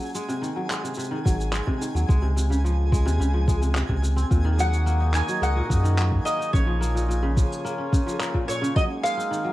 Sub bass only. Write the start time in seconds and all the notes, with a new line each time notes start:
1.26 G#1
1.95 D#2
2.09 C#2
3.06 D#2
3.20 C#2
3.89 C#2
4.31 D#2
5.42 C#2
5.70 F#2
6.54 A#1